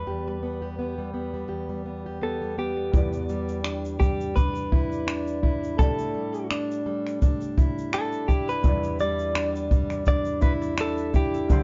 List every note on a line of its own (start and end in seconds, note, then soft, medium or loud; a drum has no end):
0.00 0.27 G3 soft
0.00 2.55 B4 medium
0.07 1.47 E2 medium
0.07 0.62 G4 medium
0.27 0.98 G3 soft
0.43 0.78 B3 medium
0.62 1.48 G4 medium
0.79 1.13 B3 medium
0.98 1.33 G3 medium
1.14 1.85 B3 medium
1.34 1.69 G3 soft
1.48 2.92 E2 medium
1.48 2.06 G4 medium
1.69 2.41 G3 soft
1.86 2.21 B3 medium
2.06 4.72 G4 medium
2.22 2.57 B3 medium
2.22 2.58 A4 medium
2.41 2.76 G3 soft
2.58 3.63 B3 medium
2.58 3.98 G4 medium
2.77 3.29 G3 soft
2.92 5.79 E2 medium
2.92 5.74 G3 medium
2.92 5.75 E4 medium
2.92 5.76 D5 medium
2.92 kick loud
2.92 shaker medium
3.13 shaker soft
3.29 3.99 G3 medium
3.29 shaker soft
3.48 shaker soft
3.64 4.36 D4 medium
3.64 finger snap medium
3.64 shaker medium
3.85 shaker medium
3.99 6.14 G3 medium
3.99 4.37 G4 medium
3.99 kick medium
3.99 shaker medium
4.21 shaker soft
4.36 5.06 D4 medium
4.36 5.75 B4 medium
4.36 kick medium
4.36 shaker medium
4.55 shaker medium
4.72 5.42 E4 medium
4.72 kick medium
4.92 shaker soft
5.07 6.51 D4 medium
5.07 finger snap medium
5.07 shaker medium
5.27 shaker soft
5.43 6.54 E4 medium
5.43 kick medium
5.64 shaker soft
5.77 8.64 A2 medium
5.77 8.59 A3 medium
5.77 8.60 G4 medium
5.77 6.46 A4 medium
5.77 8.61 D5 medium
5.77 kick loud
5.77 shaker medium
5.99 shaker soft
6.14 6.86 G3 medium
6.34 shaker soft
6.51 7.22 D4 medium
6.51 finger snap loud
6.51 shaker medium
6.71 shaker medium
6.86 9.00 G3 medium
7.07 finger snap soft
7.07 shaker soft
7.22 7.94 D4 medium
7.22 kick medium
7.22 shaker medium
7.41 shaker medium
7.58 8.28 E4 medium
7.58 kick loud
7.58 shaker soft
7.78 shaker medium
7.93 9.35 D4 medium
7.93 8.30 A4 medium
7.93 finger snap medium
7.93 shaker medium
8.12 shaker soft
8.28 9.38 E4 medium
8.28 8.49 G4 medium
8.28 kick medium
8.28 shaker soft
8.49 9.00 B4 medium
8.49 shaker soft
8.62 11.50 E2 medium
8.62 11.45 G3 medium
8.62 11.46 E4 medium
8.62 kick loud
8.62 shaker medium
8.67 11.47 D5 medium
8.83 shaker soft
8.99 9.71 G3 medium
8.99 10.03 D5 loud
8.99 shaker medium
9.19 shaker soft
9.35 10.06 D4 medium
9.35 finger snap loud
9.35 shaker medium
9.56 shaker medium
9.71 11.63 G3 medium
9.71 kick medium
9.71 shaker medium
9.90 finger snap soft
9.90 shaker soft
10.06 10.78 D4 medium
10.06 10.42 D5 medium
10.06 kick medium
10.06 shaker medium
10.25 shaker medium
10.41 11.13 E4 medium
10.41 10.52 B4 medium
10.41 kick medium
10.41 shaker medium
10.62 shaker medium
10.78 11.63 D4 medium
10.78 11.13 A4 medium
10.78 finger snap loud
10.78 shaker medium
10.97 shaker soft
11.14 11.57 E4 medium
11.14 11.63 G4 medium
11.14 kick medium
11.14 shaker soft
11.34 shaker soft
11.48 11.63 D3 medium
11.48 11.63 G3 medium
11.48 11.63 D4 medium
11.48 11.63 C5 medium
11.48 kick loud
11.48 shaker medium